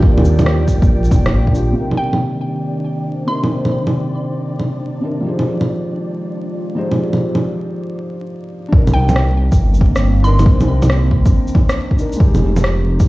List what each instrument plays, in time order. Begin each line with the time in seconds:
Already playing: detuned saw bass A#1, ambient pad D#3 A#3 D5 G5, synth texture G3 G5, felt piano D4 F4 G4
0.02 felt piano F4, kick
0.06 felt piano A#4
0.17 detuned saw bass D#2, low bongo
0.25 shaker
0.39 low bongo, shaker
0.46 cross-stick
0.68 kick, shaker
0.82 detuned saw bass A#1, kick, shaker
1.04 shaker
1.11 detuned saw bass D#1, kick, low bongo, shaker
1.26 cross-stick, low bongo
1.33 detuned saw bass A#1
1.47 kick
1.52 detuned saw bass A#1, felt piano D4 F4, shaker
1.56 felt piano G4
1.72 felt piano C3 D4
1.77 synth texture D4 D5, felt piano D#4 A#4
1.91 low bongo
1.97 synth pluck G5
2.13 low bongo
2.61 ambient pad C5
3.26 felt piano C3 D4 D#4 A#4, synth pluck C6
3.44 felt piano C3, low bongo
3.48 felt piano D4 D#4
3.54 felt piano C5
3.65 low bongo
3.87 low bongo
4.59 low bongo
5.01 felt piano C3 D4 D#4
5.05 felt piano A#4
5.20 felt piano F3 D#4 G4
5.26 felt piano G#4 C5
5.39 low bongo
5.61 ambient pad G#3, low bongo
6.08 ambient pad F4
6.75 felt piano F3 D#4 G4 G#4 C5
6.91 felt piano F3, low bongo
6.96 felt piano D#4 G4 G#4
7.02 felt piano D5
7.13 low bongo
7.35 low bongo
8.68 felt piano D4 D#4
8.72 detuned saw bass C2, kick
8.76 felt piano A#4
8.87 ambient pad A#3, low bongo, shaker
8.94 synth pluck G5
9.09 low bongo, shaker
9.16 cross-stick
9.31 ambient pad C4
9.52 detuned saw bass G1, kick, shaker
9.59 detuned saw bass G1
9.74 shaker
9.81 kick
9.96 cross-stick, shaker
10.23 felt piano D4 D#4 A#4, synth pluck C6, shaker
10.39 felt piano D4, low bongo, shaker
10.46 felt piano D#4, kick
10.50 felt piano C5
10.60 detuned saw bass C2, low bongo, shaker
10.82 low bongo, shaker
10.90 cross-stick
11.11 kick
11.26 detuned saw bass G1, kick, shaker
11.47 shaker
11.55 kick, low bongo
11.69 cross-stick, shaker
11.91 kick
11.96 felt piano D4 D#4, shaker
12.01 felt piano A#4
12.13 felt piano G#3, shaker
12.20 ambient pad F3, felt piano D#4, kick
12.24 felt piano G4
12.34 detuned saw bass F1, low bongo, shaker
12.39 ambient pad D#4
12.56 ambient pad G#3, low bongo, shaker
12.64 cross-stick
13.00 detuned saw bass C2, kick, shaker